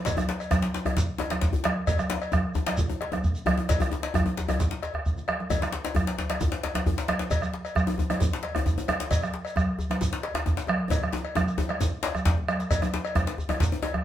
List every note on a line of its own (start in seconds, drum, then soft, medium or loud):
0.05 bombo low medium
0.05 cowbell medium
0.05 djembe slap medium
0.05 low conga medium
0.05 djembe bass medium
0.05 shekere medium
0.17 bombo rim medium
0.17 high conga medium
0.17 djembe tone medium
0.17 djembe bass medium
0.17 shekere soft
0.29 djembe slap medium
0.40 cowbell soft
0.40 shekere soft
0.51 bombo rim medium
0.51 bombo low medium
0.51 djembe tone loud
0.51 high conga medium
0.51 djembe tone medium
0.51 shekere soft
0.62 djembe slap medium
0.74 djembe slap medium
0.74 djembe slap soft
0.74 shekere soft
0.85 bombo rim medium
0.85 cowbell soft
0.85 high conga medium
0.85 djembe bass medium
0.97 bombo low medium
0.97 djembe slap medium
0.97 djembe tone medium
0.97 low conga medium
0.97 shekere medium
1.09 high conga soft
1.18 cowbell soft
1.18 djembe slap medium
1.18 djembe tone loud
1.18 high conga soft
1.30 bombo rim medium
1.30 djembe slap medium
1.30 djembe slap soft
1.30 djembe tone medium
1.30 high conga medium
1.30 djembe bass medium
1.41 bombo low medium
1.41 djembe slap medium
1.41 high conga soft
1.41 shekere soft
1.53 djembe bass medium
1.53 shekere soft
1.64 bombo rim loud
1.64 cowbell soft
1.64 djembe slap medium
1.64 high conga medium
1.64 djembe tone medium
1.77 djembe slap soft
1.87 bombo low medium
1.87 cowbell medium
1.87 djembe bass medium
1.87 low conga medium
1.87 shekere medium
1.99 bombo rim medium
1.99 djembe tone medium
1.99 high conga medium
1.99 shekere soft
2.10 djembe slap loud
2.10 djembe slap medium
2.21 cowbell soft
2.21 shekere soft
2.32 bombo rim medium
2.32 bombo low medium
2.32 djembe tone medium
2.32 high conga medium
2.32 shekere soft
2.55 djembe slap soft
2.55 djembe tone medium
2.55 djembe bass medium
2.55 shekere soft
2.67 bombo rim medium
2.67 cowbell soft
2.67 djembe slap loud
2.67 high conga medium
2.77 bombo low medium
2.77 djembe tone medium
2.77 low conga medium
2.77 shekere medium
2.89 djembe tone medium
2.89 high conga soft
3.01 cowbell medium
3.01 djembe slap medium
3.01 high conga soft
3.12 bombo rim medium
3.12 djembe slap soft
3.12 djembe tone medium
3.12 high conga medium
3.12 djembe bass medium
3.24 bombo low loud
3.24 high conga soft
3.24 shekere soft
3.35 shekere soft
3.46 bombo rim loud
3.46 cowbell soft
3.46 djembe tone medium
3.46 high conga medium
3.46 djembe bass medium
3.57 djembe slap soft
3.57 djembe tone medium
3.69 bombo rim soft
3.69 bombo low medium
3.69 cowbell medium
3.69 djembe slap medium
3.69 high conga soft
3.69 djembe bass medium
3.69 low conga medium
3.69 shekere medium
3.80 bombo rim medium
3.80 djembe tone medium
3.80 high conga medium
3.80 djembe bass loud
3.80 shekere soft
3.91 djembe slap medium
3.91 djembe tone medium
3.91 shekere soft
4.03 bombo rim soft
4.03 cowbell soft
4.03 djembe slap medium
4.14 bombo rim medium
4.14 bombo low medium
4.14 high conga medium
4.14 djembe tone medium
4.14 djembe bass loud
4.14 shekere soft
4.26 djembe tone medium
4.37 djembe slap medium
4.37 djembe bass medium
4.37 shekere soft
4.48 bombo rim medium
4.48 cowbell soft
4.48 high conga medium
4.48 djembe bass medium
4.48 shekere soft
4.60 bombo low medium
4.60 djembe tone medium
4.60 low conga medium
4.60 shekere soft
4.71 djembe slap medium
4.71 djembe slap soft
4.71 high conga soft
4.83 cowbell soft
4.83 djembe slap medium
4.83 shekere soft
4.94 bombo rim medium
4.94 djembe tone soft
4.94 djembe bass medium
5.06 bombo low medium
5.06 low conga soft
5.06 shekere soft
5.17 djembe slap soft
5.17 low conga soft
5.17 shekere soft
5.28 bombo rim loud
5.28 cowbell soft
5.28 djembe tone medium
5.28 high conga medium
5.40 djembe slap soft
5.40 high conga medium
5.50 bombo low medium
5.50 cowbell medium
5.50 djembe bass medium
5.50 low conga medium
5.50 shekere soft
5.62 bombo rim medium
5.62 djembe slap medium
5.62 djembe tone medium
5.62 high conga medium
5.62 shekere soft
5.72 djembe slap medium
5.85 cowbell soft
5.85 djembe slap medium
5.85 shekere soft
5.95 bombo rim medium
5.95 bombo low loud
5.95 djembe tone medium
5.95 high conga medium
5.95 djembe bass loud
5.95 shekere soft
6.07 djembe slap medium
6.18 djembe slap soft
6.18 djembe slap medium
6.18 djembe bass medium
6.18 shekere soft
6.29 bombo rim medium
6.29 cowbell soft
6.29 djembe slap medium
6.29 high conga medium
6.41 bombo low medium
6.41 djembe tone medium
6.41 djembe bass medium
6.41 low conga medium
6.41 shekere medium
6.52 djembe slap medium
6.52 high conga soft
6.63 cowbell soft
6.63 djembe slap medium
6.63 high conga soft
6.74 bombo rim medium
6.74 djembe slap medium
6.74 high conga medium
6.74 djembe tone soft
6.74 djembe bass medium
6.86 bombo low medium
6.86 high conga soft
6.86 djembe bass loud
6.86 shekere soft
6.98 djembe slap medium
6.98 shekere soft
7.08 bombo rim medium
7.08 cowbell soft
7.08 djembe slap medium
7.08 high conga medium
7.08 djembe tone medium
7.19 djembe slap medium
7.19 djembe slap soft
7.31 bombo low medium
7.31 cowbell medium
7.31 djembe bass medium
7.31 low conga medium
7.31 shekere medium
7.42 bombo rim medium
7.42 djembe tone medium
7.42 high conga medium
7.42 shekere soft
7.54 djembe slap medium
7.65 cowbell soft
7.65 shekere soft
7.75 bombo rim medium
7.75 bombo low medium
7.75 djembe tone medium
7.75 high conga medium
7.75 shekere soft
7.87 djembe tone loud
7.98 djembe slap soft
7.98 djembe tone medium
7.98 djembe bass medium
7.98 shekere soft
8.10 bombo rim medium
8.10 cowbell soft
8.10 high conga medium
8.10 djembe tone medium
8.20 bombo low loud
8.20 djembe tone medium
8.20 low conga medium
8.20 shekere medium
8.22 djembe tone medium
8.33 djembe slap medium
8.33 high conga soft
8.43 cowbell soft
8.43 djembe slap medium
8.43 high conga soft
8.55 bombo rim medium
8.55 djembe slap soft
8.55 djembe tone medium
8.55 djembe tone loud
8.55 djembe bass medium
8.66 bombo low medium
8.66 djembe tone medium
8.66 high conga soft
8.66 shekere soft
8.78 djembe tone medium
8.78 shekere soft
8.88 bombo rim loud
8.88 cowbell soft
8.88 high conga medium
8.88 djembe tone medium
9.00 djembe slap soft
9.00 djembe slap medium
9.10 bombo low medium
9.10 cowbell medium
9.10 djembe bass medium
9.10 low conga medium
9.10 shekere medium
9.22 bombo rim medium
9.22 djembe tone medium
9.22 high conga medium
9.22 shekere soft
9.34 djembe slap medium
9.45 cowbell soft
9.45 shekere soft
9.56 bombo rim medium
9.56 bombo low medium
9.56 djembe tone medium
9.56 high conga medium
9.56 shekere soft
9.79 djembe slap soft
9.79 djembe bass medium
9.79 shekere soft
9.90 bombo rim medium
9.90 djembe slap medium
9.90 high conga medium
10.01 bombo low medium
10.01 djembe tone medium
10.01 low conga medium
10.01 shekere medium
10.13 djembe slap medium
10.13 high conga soft
10.23 cowbell soft
10.23 djembe slap medium
10.23 high conga soft
10.34 bombo rim medium
10.34 djembe slap soft
10.34 djembe slap medium
10.34 djembe tone medium
10.34 djembe bass medium
10.46 bombo low loud
10.46 djembe tone medium
10.46 high conga soft
10.46 shekere soft
10.57 djembe slap medium
10.57 shekere soft
10.67 bombo rim loud
10.67 cowbell soft
10.67 djembe tone medium
10.67 high conga medium
10.79 djembe slap soft
10.90 bombo rim soft
10.90 bombo low medium
10.90 cowbell medium
10.90 djembe slap soft
10.90 djembe tone loud
10.90 djembe bass medium
10.90 low conga medium
10.90 shekere medium
11.02 bombo rim medium
11.02 djembe tone medium
11.02 high conga medium
11.13 djembe slap medium
11.13 djembe tone loud
11.13 shekere soft
11.25 cowbell soft
11.25 djembe slap soft
11.35 bombo rim loud
11.35 bombo low medium
11.35 djembe tone loud
11.35 djembe tone medium
11.35 high conga medium
11.35 shekere soft
11.48 bombo rim soft
11.48 shekere soft
11.58 bombo rim soft
11.58 djembe tone loud
11.58 djembe bass medium
11.58 shekere soft
11.69 bombo rim medium
11.69 cowbell soft
11.69 djembe slap soft
11.69 high conga medium
11.81 bombo rim soft
11.81 bombo low medium
11.81 djembe slap soft
11.81 djembe tone medium
11.81 djembe tone loud
11.81 high conga soft
11.81 low conga medium
11.81 shekere medium
12.03 cowbell soft
12.03 djembe slap loud
12.03 djembe slap medium
12.03 shekere soft
12.15 bombo rim medium
12.15 djembe tone medium
12.15 high conga medium
12.15 djembe bass medium
12.15 shekere soft
12.26 bombo low loud
12.26 djembe slap loud
12.26 djembe bass soft
12.26 shekere soft
12.38 high conga soft
12.38 djembe bass soft
12.48 bombo rim loud
12.48 cowbell soft
12.48 djembe slap soft
12.48 high conga medium
12.48 shekere soft
12.60 djembe slap medium
12.60 shekere soft
12.71 bombo low medium
12.71 cowbell medium
12.71 djembe bass medium
12.71 low conga medium
12.71 shekere medium
12.82 bombo rim medium
12.82 djembe tone medium
12.82 high conga medium
12.82 djembe tone medium
12.82 shekere soft
12.94 djembe slap medium
13.05 cowbell medium
13.05 shekere soft
13.15 bombo rim medium
13.15 bombo low loud
13.15 high conga medium
13.15 djembe tone medium
13.15 shekere soft
13.27 djembe slap medium
13.38 djembe slap soft
13.38 djembe bass medium
13.38 shekere soft
13.49 bombo rim medium
13.49 cowbell medium
13.49 djembe tone loud
13.49 high conga medium
13.60 bombo low medium
13.60 djembe slap medium
13.60 djembe tone medium
13.60 low conga medium
13.60 shekere medium
13.72 high conga soft
13.72 djembe tone medium
13.82 cowbell medium
13.82 djembe slap medium
13.82 djembe tone medium
13.82 high conga soft
13.94 bombo rim medium
13.94 djembe slap soft
13.94 high conga medium
13.94 djembe tone medium
13.94 djembe bass medium